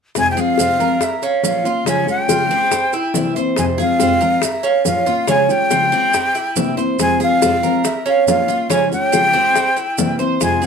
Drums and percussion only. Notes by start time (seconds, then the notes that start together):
0.15 high bongo, maracas
0.36 high bongo, maracas
0.58 high bongo, maracas
0.79 high bongo, maracas
1.01 high bongo, maracas
1.22 high bongo, maracas
1.44 high bongo, low bongo, maracas
1.66 maracas
1.86 high bongo, maracas
2.07 high bongo, maracas
2.29 high bongo, maracas
2.51 high bongo, maracas
2.72 high bongo, maracas
2.93 high bongo, maracas
3.14 high bongo, low bongo, maracas
3.36 maracas
3.56 high bongo, maracas
3.78 high bongo, maracas
4.00 high bongo, maracas
4.21 high bongo, maracas
4.42 high bongo, maracas
4.64 high bongo, maracas
4.85 high bongo, low bongo, maracas
5.07 maracas
5.28 high bongo, maracas
5.49 high bongo, maracas
5.71 high bongo, maracas
5.92 high bongo, maracas
6.13 high bongo, maracas
6.35 high bongo, maracas
6.56 high bongo, low bongo, maracas
6.78 maracas
6.99 high bongo, maracas
7.20 high bongo, maracas
7.42 high bongo, maracas
7.63 high bongo, maracas
7.84 high bongo, maracas
8.06 high bongo, maracas
8.28 high bongo, low bongo, maracas
8.49 maracas
8.70 high bongo, maracas
8.92 high bongo, maracas
9.13 high bongo, maracas
9.34 high bongo, maracas
9.55 high bongo, maracas
9.77 high bongo, maracas
9.98 high bongo, low bongo, maracas
10.20 maracas
10.41 high bongo, maracas
10.62 high bongo, maracas